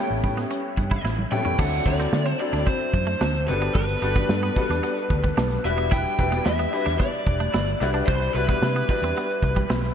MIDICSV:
0, 0, Header, 1, 7, 480
1, 0, Start_track
1, 0, Tempo, 540541
1, 1412, Time_signature, 4, 2, 24, 8
1, 8828, End_track
2, 0, Start_track
2, 0, Title_t, "Lead electric guitar"
2, 0, Program_c, 0, 29
2, 0, Note_on_c, 0, 79, 82
2, 902, Note_off_c, 0, 79, 0
2, 1172, Note_on_c, 0, 79, 77
2, 1395, Note_off_c, 0, 79, 0
2, 1417, Note_on_c, 0, 78, 89
2, 1651, Note_on_c, 0, 74, 102
2, 1662, Note_off_c, 0, 78, 0
2, 2121, Note_off_c, 0, 74, 0
2, 2132, Note_on_c, 0, 74, 90
2, 2367, Note_off_c, 0, 74, 0
2, 2370, Note_on_c, 0, 72, 85
2, 3086, Note_off_c, 0, 72, 0
2, 3089, Note_on_c, 0, 71, 81
2, 3320, Note_off_c, 0, 71, 0
2, 3331, Note_on_c, 0, 71, 86
2, 5014, Note_off_c, 0, 71, 0
2, 5017, Note_on_c, 0, 76, 89
2, 5254, Note_on_c, 0, 79, 89
2, 5262, Note_off_c, 0, 76, 0
2, 5733, Note_on_c, 0, 76, 83
2, 5748, Note_off_c, 0, 79, 0
2, 6179, Note_off_c, 0, 76, 0
2, 6206, Note_on_c, 0, 74, 85
2, 7133, Note_off_c, 0, 74, 0
2, 7165, Note_on_c, 0, 72, 88
2, 7403, Note_off_c, 0, 72, 0
2, 7407, Note_on_c, 0, 71, 89
2, 8828, Note_off_c, 0, 71, 0
2, 8828, End_track
3, 0, Start_track
3, 0, Title_t, "Grand piano"
3, 0, Program_c, 1, 0
3, 0, Control_c, 1, 64, 127
3, 0, Note_on_c, 1, 55, 79
3, 0, Note_on_c, 1, 59, 73
3, 0, Note_on_c, 1, 61, 72
3, 0, Note_on_c, 1, 64, 71
3, 0, Note_on_c, 1, 69, 85
3, 489, Note_off_c, 1, 55, 0
3, 491, Note_off_c, 1, 59, 0
3, 492, Note_off_c, 1, 61, 0
3, 494, Note_off_c, 1, 64, 0
3, 495, Note_off_c, 1, 69, 0
3, 1168, Note_on_c, 1, 55, 78
3, 1172, Note_on_c, 1, 59, 69
3, 1175, Note_on_c, 1, 61, 70
3, 1176, Note_on_c, 1, 64, 77
3, 1180, Note_on_c, 1, 69, 87
3, 1331, Note_off_c, 1, 55, 0
3, 1333, Note_off_c, 1, 59, 0
3, 1334, Note_off_c, 1, 61, 0
3, 1335, Note_off_c, 1, 64, 0
3, 1337, Note_off_c, 1, 69, 0
3, 1412, Note_on_c, 1, 54, 68
3, 1414, Note_on_c, 1, 60, 60
3, 1417, Note_on_c, 1, 62, 61
3, 1419, Note_on_c, 1, 64, 63
3, 1421, Note_on_c, 1, 69, 79
3, 1425, Control_c, 1, 64, 0
3, 1566, Control_c, 1, 64, 127
3, 1573, Note_off_c, 1, 54, 0
3, 1574, Note_off_c, 1, 60, 0
3, 1575, Note_off_c, 1, 62, 0
3, 1576, Note_off_c, 1, 64, 0
3, 1577, Note_off_c, 1, 69, 0
3, 1651, Note_on_c, 1, 54, 71
3, 1655, Note_on_c, 1, 60, 65
3, 1658, Note_on_c, 1, 62, 69
3, 1660, Note_on_c, 1, 64, 64
3, 1663, Note_on_c, 1, 69, 77
3, 1973, Note_off_c, 1, 54, 0
3, 1975, Note_off_c, 1, 60, 0
3, 1976, Note_off_c, 1, 62, 0
3, 1977, Note_off_c, 1, 64, 0
3, 1979, Note_off_c, 1, 69, 0
3, 2133, Note_on_c, 1, 54, 62
3, 2133, Note_on_c, 1, 60, 53
3, 2137, Note_on_c, 1, 62, 59
3, 2140, Note_on_c, 1, 64, 59
3, 2144, Note_on_c, 1, 69, 68
3, 2775, Note_off_c, 1, 54, 0
3, 2776, Note_off_c, 1, 60, 0
3, 2778, Note_off_c, 1, 62, 0
3, 2779, Note_off_c, 1, 64, 0
3, 2781, Note_off_c, 1, 69, 0
3, 3091, Note_on_c, 1, 55, 68
3, 3094, Note_on_c, 1, 59, 75
3, 3099, Note_on_c, 1, 62, 73
3, 3100, Note_on_c, 1, 66, 68
3, 3102, Note_on_c, 1, 69, 83
3, 3105, Control_c, 1, 64, 0
3, 3269, Control_c, 1, 64, 127
3, 3476, Note_off_c, 1, 55, 0
3, 3477, Note_off_c, 1, 59, 0
3, 3480, Note_off_c, 1, 62, 0
3, 3480, Note_off_c, 1, 66, 0
3, 3481, Note_off_c, 1, 69, 0
3, 3566, Note_on_c, 1, 55, 77
3, 3570, Note_on_c, 1, 59, 67
3, 3573, Note_on_c, 1, 62, 70
3, 3575, Note_on_c, 1, 66, 68
3, 3579, Note_on_c, 1, 69, 88
3, 3891, Note_off_c, 1, 55, 0
3, 3892, Note_off_c, 1, 59, 0
3, 3894, Note_off_c, 1, 62, 0
3, 3895, Note_off_c, 1, 66, 0
3, 3897, Note_off_c, 1, 69, 0
3, 4050, Note_on_c, 1, 55, 72
3, 4052, Note_on_c, 1, 59, 68
3, 4054, Note_on_c, 1, 62, 73
3, 4058, Note_on_c, 1, 66, 71
3, 4061, Note_on_c, 1, 69, 86
3, 4694, Note_off_c, 1, 55, 0
3, 4695, Note_off_c, 1, 59, 0
3, 4696, Note_off_c, 1, 62, 0
3, 4698, Note_off_c, 1, 66, 0
3, 4700, Note_off_c, 1, 69, 0
3, 5014, Note_on_c, 1, 55, 76
3, 5016, Note_on_c, 1, 62, 65
3, 5016, Note_on_c, 1, 64, 75
3, 5019, Note_on_c, 1, 66, 69
3, 5023, Note_on_c, 1, 71, 87
3, 5025, Control_c, 1, 64, 0
3, 5171, Control_c, 1, 64, 127
3, 5398, Note_off_c, 1, 55, 0
3, 5399, Note_off_c, 1, 62, 0
3, 5399, Note_off_c, 1, 64, 0
3, 5400, Note_off_c, 1, 66, 0
3, 5402, Note_off_c, 1, 71, 0
3, 5490, Note_on_c, 1, 55, 76
3, 5491, Note_on_c, 1, 62, 67
3, 5496, Note_on_c, 1, 64, 65
3, 5498, Note_on_c, 1, 66, 70
3, 5501, Note_on_c, 1, 71, 86
3, 5813, Note_off_c, 1, 55, 0
3, 5813, Note_off_c, 1, 62, 0
3, 5816, Note_off_c, 1, 64, 0
3, 5817, Note_off_c, 1, 66, 0
3, 5818, Note_off_c, 1, 71, 0
3, 5976, Note_on_c, 1, 55, 64
3, 5980, Note_on_c, 1, 62, 60
3, 5981, Note_on_c, 1, 64, 57
3, 5984, Note_on_c, 1, 66, 62
3, 5985, Note_on_c, 1, 71, 76
3, 6617, Note_off_c, 1, 55, 0
3, 6619, Note_off_c, 1, 62, 0
3, 6620, Note_off_c, 1, 64, 0
3, 6621, Note_off_c, 1, 66, 0
3, 6621, Note_off_c, 1, 71, 0
3, 6935, Note_on_c, 1, 55, 90
3, 6937, Note_on_c, 1, 62, 87
3, 6941, Note_on_c, 1, 64, 87
3, 6945, Note_on_c, 1, 66, 89
3, 6946, Control_c, 1, 64, 0
3, 6946, Note_on_c, 1, 71, 104
3, 7084, Control_c, 1, 64, 127
3, 7318, Note_off_c, 1, 55, 0
3, 7319, Note_off_c, 1, 62, 0
3, 7321, Note_off_c, 1, 64, 0
3, 7323, Note_off_c, 1, 66, 0
3, 7323, Note_off_c, 1, 71, 0
3, 7418, Note_on_c, 1, 55, 77
3, 7419, Note_on_c, 1, 62, 69
3, 7423, Note_on_c, 1, 64, 72
3, 7425, Note_on_c, 1, 66, 67
3, 7429, Note_on_c, 1, 71, 88
3, 7737, Note_off_c, 1, 55, 0
3, 7737, Note_off_c, 1, 62, 0
3, 7739, Note_off_c, 1, 64, 0
3, 7740, Note_off_c, 1, 66, 0
3, 7742, Note_off_c, 1, 71, 0
3, 7893, Note_on_c, 1, 55, 66
3, 7899, Note_on_c, 1, 62, 61
3, 7899, Note_on_c, 1, 64, 55
3, 7901, Note_on_c, 1, 66, 61
3, 7904, Note_on_c, 1, 71, 73
3, 8535, Note_off_c, 1, 55, 0
3, 8538, Note_off_c, 1, 62, 0
3, 8538, Note_off_c, 1, 64, 0
3, 8539, Note_off_c, 1, 66, 0
3, 8540, Note_off_c, 1, 71, 0
3, 8828, End_track
4, 0, Start_track
4, 0, Title_t, "Clean electric guitar"
4, 0, Program_c, 2, 27
4, 333, Note_on_c, 2, 59, 58
4, 414, Note_off_c, 2, 59, 0
4, 450, Note_on_c, 2, 61, 62
4, 533, Note_off_c, 2, 61, 0
4, 809, Note_on_c, 2, 64, 63
4, 892, Note_off_c, 2, 64, 0
4, 929, Note_on_c, 2, 64, 73
4, 1012, Note_off_c, 2, 64, 0
4, 1287, Note_on_c, 2, 61, 72
4, 1371, Note_off_c, 2, 61, 0
4, 1411, Note_on_c, 2, 62, 85
4, 1493, Note_off_c, 2, 62, 0
4, 1773, Note_on_c, 2, 60, 67
4, 1855, Note_off_c, 2, 60, 0
4, 2005, Note_on_c, 2, 60, 69
4, 2089, Note_off_c, 2, 60, 0
4, 2247, Note_on_c, 2, 62, 67
4, 2331, Note_off_c, 2, 62, 0
4, 2368, Note_on_c, 2, 60, 78
4, 2452, Note_off_c, 2, 60, 0
4, 2725, Note_on_c, 2, 57, 79
4, 2810, Note_off_c, 2, 57, 0
4, 2850, Note_on_c, 2, 62, 79
4, 2933, Note_off_c, 2, 62, 0
4, 3213, Note_on_c, 2, 59, 73
4, 3295, Note_off_c, 2, 59, 0
4, 3334, Note_on_c, 2, 55, 79
4, 3415, Note_off_c, 2, 55, 0
4, 3692, Note_on_c, 2, 59, 66
4, 3774, Note_off_c, 2, 59, 0
4, 3933, Note_on_c, 2, 59, 63
4, 4015, Note_off_c, 2, 59, 0
4, 4179, Note_on_c, 2, 62, 65
4, 4259, Note_off_c, 2, 62, 0
4, 4291, Note_on_c, 2, 59, 80
4, 4374, Note_off_c, 2, 59, 0
4, 4650, Note_on_c, 2, 55, 81
4, 4733, Note_off_c, 2, 55, 0
4, 4772, Note_on_c, 2, 62, 82
4, 4854, Note_off_c, 2, 62, 0
4, 5130, Note_on_c, 2, 59, 65
4, 5213, Note_off_c, 2, 59, 0
4, 5249, Note_on_c, 2, 64, 84
4, 5333, Note_off_c, 2, 64, 0
4, 5613, Note_on_c, 2, 59, 68
4, 5695, Note_off_c, 2, 59, 0
4, 5854, Note_on_c, 2, 59, 66
4, 5936, Note_off_c, 2, 59, 0
4, 6090, Note_on_c, 2, 62, 80
4, 6173, Note_off_c, 2, 62, 0
4, 6212, Note_on_c, 2, 59, 84
4, 6295, Note_off_c, 2, 59, 0
4, 6573, Note_on_c, 2, 57, 73
4, 6655, Note_off_c, 2, 57, 0
4, 6693, Note_on_c, 2, 64, 73
4, 6775, Note_off_c, 2, 64, 0
4, 7050, Note_on_c, 2, 62, 70
4, 7133, Note_off_c, 2, 62, 0
4, 7175, Note_on_c, 2, 60, 81
4, 7256, Note_off_c, 2, 60, 0
4, 7536, Note_on_c, 2, 59, 69
4, 7617, Note_off_c, 2, 59, 0
4, 7779, Note_on_c, 2, 59, 61
4, 7859, Note_off_c, 2, 59, 0
4, 8026, Note_on_c, 2, 60, 69
4, 8103, Note_off_c, 2, 60, 0
4, 8148, Note_on_c, 2, 59, 85
4, 8224, Note_off_c, 2, 59, 0
4, 8492, Note_on_c, 2, 55, 80
4, 8574, Note_off_c, 2, 55, 0
4, 8613, Note_on_c, 2, 60, 75
4, 8694, Note_off_c, 2, 60, 0
4, 8828, End_track
5, 0, Start_track
5, 0, Title_t, "Fingered electric bass"
5, 0, Program_c, 3, 33
5, 92, Note_on_c, 3, 33, 85
5, 211, Note_on_c, 3, 45, 80
5, 225, Note_off_c, 3, 33, 0
5, 386, Note_off_c, 3, 45, 0
5, 685, Note_on_c, 3, 43, 76
5, 862, Note_off_c, 3, 43, 0
5, 924, Note_on_c, 3, 33, 89
5, 1102, Note_off_c, 3, 33, 0
5, 1410, Note_on_c, 3, 38, 89
5, 1586, Note_off_c, 3, 38, 0
5, 1652, Note_on_c, 3, 38, 86
5, 1827, Note_off_c, 3, 38, 0
5, 1886, Note_on_c, 3, 50, 82
5, 2063, Note_off_c, 3, 50, 0
5, 2245, Note_on_c, 3, 38, 85
5, 2335, Note_off_c, 3, 38, 0
5, 2608, Note_on_c, 3, 42, 84
5, 2784, Note_off_c, 3, 42, 0
5, 2849, Note_on_c, 3, 38, 81
5, 3089, Note_on_c, 3, 31, 83
5, 3102, Note_off_c, 3, 38, 0
5, 3265, Note_off_c, 3, 31, 0
5, 3329, Note_on_c, 3, 31, 97
5, 3505, Note_off_c, 3, 31, 0
5, 3568, Note_on_c, 3, 31, 90
5, 3744, Note_off_c, 3, 31, 0
5, 3810, Note_on_c, 3, 43, 90
5, 3985, Note_off_c, 3, 43, 0
5, 4170, Note_on_c, 3, 40, 79
5, 4259, Note_off_c, 3, 40, 0
5, 4530, Note_on_c, 3, 38, 87
5, 4706, Note_off_c, 3, 38, 0
5, 4770, Note_on_c, 3, 35, 88
5, 4946, Note_off_c, 3, 35, 0
5, 5014, Note_on_c, 3, 28, 100
5, 5363, Note_off_c, 3, 28, 0
5, 5496, Note_on_c, 3, 28, 87
5, 5669, Note_off_c, 3, 28, 0
5, 5736, Note_on_c, 3, 40, 87
5, 5909, Note_off_c, 3, 40, 0
5, 6096, Note_on_c, 3, 40, 83
5, 6182, Note_off_c, 3, 40, 0
5, 6452, Note_on_c, 3, 28, 78
5, 6627, Note_off_c, 3, 28, 0
5, 6696, Note_on_c, 3, 31, 84
5, 6870, Note_off_c, 3, 31, 0
5, 6935, Note_on_c, 3, 36, 91
5, 7109, Note_off_c, 3, 36, 0
5, 7174, Note_on_c, 3, 36, 85
5, 7348, Note_off_c, 3, 36, 0
5, 7410, Note_on_c, 3, 36, 80
5, 7586, Note_off_c, 3, 36, 0
5, 7652, Note_on_c, 3, 48, 100
5, 7826, Note_off_c, 3, 48, 0
5, 8008, Note_on_c, 3, 40, 69
5, 8097, Note_off_c, 3, 40, 0
5, 8369, Note_on_c, 3, 36, 88
5, 8545, Note_off_c, 3, 36, 0
5, 8610, Note_on_c, 3, 35, 74
5, 8785, Note_off_c, 3, 35, 0
5, 8828, End_track
6, 0, Start_track
6, 0, Title_t, "Muted clean electric guitar strokes"
6, 210, Note_on_c, 9, 29, 39
6, 299, Note_off_c, 9, 29, 0
6, 692, Note_on_c, 9, 29, 39
6, 781, Note_off_c, 9, 29, 0
6, 1171, Note_on_c, 9, 29, 37
6, 1260, Note_off_c, 9, 29, 0
6, 1650, Note_on_c, 9, 29, 42
6, 1739, Note_off_c, 9, 29, 0
6, 2132, Note_on_c, 9, 29, 40
6, 2221, Note_off_c, 9, 29, 0
6, 2611, Note_on_c, 9, 29, 44
6, 2700, Note_off_c, 9, 29, 0
6, 3093, Note_on_c, 9, 29, 42
6, 3181, Note_off_c, 9, 29, 0
6, 3572, Note_on_c, 9, 29, 41
6, 3661, Note_off_c, 9, 29, 0
6, 4055, Note_on_c, 9, 29, 37
6, 4143, Note_off_c, 9, 29, 0
6, 4534, Note_on_c, 9, 29, 44
6, 4623, Note_off_c, 9, 29, 0
6, 5012, Note_on_c, 9, 29, 40
6, 5101, Note_off_c, 9, 29, 0
6, 5495, Note_on_c, 9, 29, 44
6, 5584, Note_off_c, 9, 29, 0
6, 5976, Note_on_c, 9, 29, 43
6, 6065, Note_off_c, 9, 29, 0
6, 6455, Note_on_c, 9, 29, 47
6, 6544, Note_off_c, 9, 29, 0
6, 6930, Note_on_c, 9, 29, 41
6, 7019, Note_off_c, 9, 29, 0
6, 7418, Note_on_c, 9, 29, 42
6, 7507, Note_off_c, 9, 29, 0
6, 7904, Note_on_c, 9, 29, 42
6, 7993, Note_off_c, 9, 29, 0
6, 8380, Note_on_c, 9, 29, 46
6, 8469, Note_off_c, 9, 29, 0
6, 8828, End_track
7, 0, Start_track
7, 0, Title_t, "Drums"
7, 208, Note_on_c, 9, 42, 64
7, 210, Note_on_c, 9, 36, 75
7, 297, Note_off_c, 9, 42, 0
7, 299, Note_off_c, 9, 36, 0
7, 333, Note_on_c, 9, 38, 33
7, 422, Note_off_c, 9, 38, 0
7, 449, Note_on_c, 9, 42, 88
7, 537, Note_off_c, 9, 42, 0
7, 687, Note_on_c, 9, 36, 83
7, 694, Note_on_c, 9, 42, 58
7, 776, Note_off_c, 9, 36, 0
7, 782, Note_off_c, 9, 42, 0
7, 811, Note_on_c, 9, 36, 81
7, 900, Note_off_c, 9, 36, 0
7, 934, Note_on_c, 9, 38, 49
7, 1023, Note_off_c, 9, 38, 0
7, 1053, Note_on_c, 9, 48, 48
7, 1142, Note_off_c, 9, 48, 0
7, 1170, Note_on_c, 9, 45, 77
7, 1259, Note_off_c, 9, 45, 0
7, 1293, Note_on_c, 9, 43, 75
7, 1381, Note_off_c, 9, 43, 0
7, 1410, Note_on_c, 9, 36, 110
7, 1411, Note_on_c, 9, 49, 96
7, 1499, Note_off_c, 9, 36, 0
7, 1500, Note_off_c, 9, 49, 0
7, 1536, Note_on_c, 9, 42, 46
7, 1625, Note_off_c, 9, 42, 0
7, 1649, Note_on_c, 9, 36, 85
7, 1650, Note_on_c, 9, 42, 71
7, 1738, Note_off_c, 9, 36, 0
7, 1739, Note_off_c, 9, 42, 0
7, 1770, Note_on_c, 9, 42, 53
7, 1771, Note_on_c, 9, 38, 34
7, 1859, Note_off_c, 9, 42, 0
7, 1860, Note_off_c, 9, 38, 0
7, 1890, Note_on_c, 9, 38, 100
7, 1979, Note_off_c, 9, 38, 0
7, 2007, Note_on_c, 9, 42, 53
7, 2096, Note_off_c, 9, 42, 0
7, 2129, Note_on_c, 9, 46, 67
7, 2217, Note_off_c, 9, 46, 0
7, 2251, Note_on_c, 9, 42, 57
7, 2253, Note_on_c, 9, 38, 33
7, 2340, Note_off_c, 9, 42, 0
7, 2342, Note_off_c, 9, 38, 0
7, 2369, Note_on_c, 9, 42, 87
7, 2370, Note_on_c, 9, 36, 95
7, 2458, Note_off_c, 9, 42, 0
7, 2459, Note_off_c, 9, 36, 0
7, 2490, Note_on_c, 9, 42, 42
7, 2579, Note_off_c, 9, 42, 0
7, 2607, Note_on_c, 9, 36, 89
7, 2613, Note_on_c, 9, 42, 59
7, 2696, Note_off_c, 9, 36, 0
7, 2702, Note_off_c, 9, 42, 0
7, 2733, Note_on_c, 9, 42, 53
7, 2822, Note_off_c, 9, 42, 0
7, 2853, Note_on_c, 9, 38, 106
7, 2941, Note_off_c, 9, 38, 0
7, 2971, Note_on_c, 9, 42, 49
7, 2974, Note_on_c, 9, 38, 32
7, 3060, Note_off_c, 9, 42, 0
7, 3063, Note_off_c, 9, 38, 0
7, 3094, Note_on_c, 9, 42, 83
7, 3183, Note_off_c, 9, 42, 0
7, 3206, Note_on_c, 9, 42, 43
7, 3295, Note_off_c, 9, 42, 0
7, 3329, Note_on_c, 9, 42, 90
7, 3331, Note_on_c, 9, 36, 106
7, 3418, Note_off_c, 9, 42, 0
7, 3420, Note_off_c, 9, 36, 0
7, 3453, Note_on_c, 9, 42, 53
7, 3541, Note_off_c, 9, 42, 0
7, 3566, Note_on_c, 9, 42, 75
7, 3655, Note_off_c, 9, 42, 0
7, 3688, Note_on_c, 9, 42, 55
7, 3689, Note_on_c, 9, 38, 32
7, 3692, Note_on_c, 9, 36, 91
7, 3777, Note_off_c, 9, 38, 0
7, 3777, Note_off_c, 9, 42, 0
7, 3781, Note_off_c, 9, 36, 0
7, 3813, Note_on_c, 9, 38, 99
7, 3902, Note_off_c, 9, 38, 0
7, 3930, Note_on_c, 9, 42, 48
7, 4019, Note_off_c, 9, 42, 0
7, 4051, Note_on_c, 9, 46, 67
7, 4053, Note_on_c, 9, 36, 82
7, 4140, Note_off_c, 9, 46, 0
7, 4142, Note_off_c, 9, 36, 0
7, 4176, Note_on_c, 9, 42, 57
7, 4178, Note_on_c, 9, 38, 33
7, 4264, Note_off_c, 9, 42, 0
7, 4266, Note_off_c, 9, 38, 0
7, 4294, Note_on_c, 9, 42, 92
7, 4383, Note_off_c, 9, 42, 0
7, 4413, Note_on_c, 9, 42, 47
7, 4502, Note_off_c, 9, 42, 0
7, 4531, Note_on_c, 9, 36, 87
7, 4535, Note_on_c, 9, 42, 66
7, 4620, Note_off_c, 9, 36, 0
7, 4624, Note_off_c, 9, 42, 0
7, 4654, Note_on_c, 9, 42, 51
7, 4655, Note_on_c, 9, 36, 84
7, 4742, Note_off_c, 9, 42, 0
7, 4743, Note_off_c, 9, 36, 0
7, 4775, Note_on_c, 9, 38, 118
7, 4863, Note_off_c, 9, 38, 0
7, 4892, Note_on_c, 9, 42, 52
7, 4895, Note_on_c, 9, 38, 32
7, 4981, Note_off_c, 9, 42, 0
7, 4984, Note_off_c, 9, 38, 0
7, 5016, Note_on_c, 9, 42, 77
7, 5105, Note_off_c, 9, 42, 0
7, 5132, Note_on_c, 9, 42, 43
7, 5221, Note_off_c, 9, 42, 0
7, 5255, Note_on_c, 9, 42, 97
7, 5256, Note_on_c, 9, 36, 111
7, 5344, Note_off_c, 9, 42, 0
7, 5345, Note_off_c, 9, 36, 0
7, 5379, Note_on_c, 9, 42, 47
7, 5468, Note_off_c, 9, 42, 0
7, 5495, Note_on_c, 9, 36, 74
7, 5495, Note_on_c, 9, 42, 74
7, 5584, Note_off_c, 9, 36, 0
7, 5584, Note_off_c, 9, 42, 0
7, 5613, Note_on_c, 9, 38, 32
7, 5613, Note_on_c, 9, 42, 56
7, 5702, Note_off_c, 9, 38, 0
7, 5702, Note_off_c, 9, 42, 0
7, 5734, Note_on_c, 9, 38, 92
7, 5823, Note_off_c, 9, 38, 0
7, 5850, Note_on_c, 9, 42, 50
7, 5939, Note_off_c, 9, 42, 0
7, 5973, Note_on_c, 9, 46, 62
7, 6061, Note_off_c, 9, 46, 0
7, 6097, Note_on_c, 9, 42, 52
7, 6099, Note_on_c, 9, 38, 36
7, 6185, Note_off_c, 9, 42, 0
7, 6187, Note_off_c, 9, 38, 0
7, 6214, Note_on_c, 9, 36, 93
7, 6214, Note_on_c, 9, 42, 95
7, 6303, Note_off_c, 9, 36, 0
7, 6303, Note_off_c, 9, 42, 0
7, 6334, Note_on_c, 9, 42, 40
7, 6423, Note_off_c, 9, 42, 0
7, 6452, Note_on_c, 9, 36, 86
7, 6461, Note_on_c, 9, 42, 64
7, 6541, Note_off_c, 9, 36, 0
7, 6550, Note_off_c, 9, 42, 0
7, 6579, Note_on_c, 9, 42, 54
7, 6668, Note_off_c, 9, 42, 0
7, 6699, Note_on_c, 9, 38, 118
7, 6788, Note_off_c, 9, 38, 0
7, 6819, Note_on_c, 9, 42, 53
7, 6908, Note_off_c, 9, 42, 0
7, 6939, Note_on_c, 9, 38, 34
7, 6940, Note_on_c, 9, 42, 77
7, 7028, Note_off_c, 9, 38, 0
7, 7029, Note_off_c, 9, 42, 0
7, 7053, Note_on_c, 9, 42, 40
7, 7142, Note_off_c, 9, 42, 0
7, 7175, Note_on_c, 9, 36, 111
7, 7176, Note_on_c, 9, 42, 88
7, 7264, Note_off_c, 9, 36, 0
7, 7265, Note_off_c, 9, 42, 0
7, 7301, Note_on_c, 9, 42, 54
7, 7390, Note_off_c, 9, 42, 0
7, 7417, Note_on_c, 9, 42, 68
7, 7506, Note_off_c, 9, 42, 0
7, 7537, Note_on_c, 9, 36, 95
7, 7538, Note_on_c, 9, 42, 49
7, 7539, Note_on_c, 9, 38, 32
7, 7626, Note_off_c, 9, 36, 0
7, 7627, Note_off_c, 9, 38, 0
7, 7627, Note_off_c, 9, 42, 0
7, 7660, Note_on_c, 9, 38, 104
7, 7748, Note_off_c, 9, 38, 0
7, 7777, Note_on_c, 9, 42, 49
7, 7866, Note_off_c, 9, 42, 0
7, 7894, Note_on_c, 9, 36, 85
7, 7895, Note_on_c, 9, 46, 64
7, 7983, Note_off_c, 9, 36, 0
7, 7984, Note_off_c, 9, 46, 0
7, 8016, Note_on_c, 9, 42, 57
7, 8105, Note_off_c, 9, 42, 0
7, 8136, Note_on_c, 9, 42, 89
7, 8225, Note_off_c, 9, 42, 0
7, 8256, Note_on_c, 9, 42, 47
7, 8345, Note_off_c, 9, 42, 0
7, 8370, Note_on_c, 9, 36, 89
7, 8377, Note_on_c, 9, 42, 61
7, 8459, Note_off_c, 9, 36, 0
7, 8466, Note_off_c, 9, 42, 0
7, 8494, Note_on_c, 9, 36, 93
7, 8496, Note_on_c, 9, 42, 58
7, 8583, Note_off_c, 9, 36, 0
7, 8585, Note_off_c, 9, 42, 0
7, 8615, Note_on_c, 9, 38, 114
7, 8703, Note_off_c, 9, 38, 0
7, 8735, Note_on_c, 9, 42, 50
7, 8738, Note_on_c, 9, 38, 32
7, 8824, Note_off_c, 9, 42, 0
7, 8827, Note_off_c, 9, 38, 0
7, 8828, End_track
0, 0, End_of_file